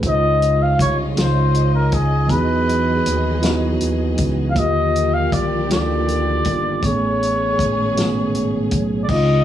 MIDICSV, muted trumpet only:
0, 0, Header, 1, 2, 480
1, 0, Start_track
1, 0, Tempo, 754717
1, 18, Time_signature, 6, 3, 24, 8
1, 6006, End_track
2, 0, Start_track
2, 0, Title_t, "Muted trumpet"
2, 0, Program_c, 0, 59
2, 48, Note_on_c, 0, 75, 103
2, 396, Note_on_c, 0, 77, 89
2, 406, Note_off_c, 0, 75, 0
2, 507, Note_off_c, 0, 77, 0
2, 517, Note_on_c, 0, 73, 92
2, 619, Note_off_c, 0, 73, 0
2, 758, Note_on_c, 0, 72, 87
2, 1083, Note_off_c, 0, 72, 0
2, 1111, Note_on_c, 0, 70, 78
2, 1236, Note_on_c, 0, 68, 83
2, 1245, Note_off_c, 0, 70, 0
2, 1464, Note_on_c, 0, 71, 98
2, 1474, Note_off_c, 0, 68, 0
2, 2421, Note_off_c, 0, 71, 0
2, 2864, Note_on_c, 0, 77, 83
2, 2914, Note_on_c, 0, 75, 115
2, 2923, Note_off_c, 0, 77, 0
2, 3269, Note_on_c, 0, 77, 100
2, 3278, Note_off_c, 0, 75, 0
2, 3391, Note_on_c, 0, 74, 95
2, 3400, Note_off_c, 0, 77, 0
2, 3624, Note_off_c, 0, 74, 0
2, 3640, Note_on_c, 0, 74, 101
2, 4356, Note_on_c, 0, 73, 91
2, 4366, Note_off_c, 0, 74, 0
2, 5547, Note_off_c, 0, 73, 0
2, 5747, Note_on_c, 0, 74, 74
2, 5786, Note_on_c, 0, 75, 114
2, 5795, Note_off_c, 0, 74, 0
2, 6006, Note_off_c, 0, 75, 0
2, 6006, End_track
0, 0, End_of_file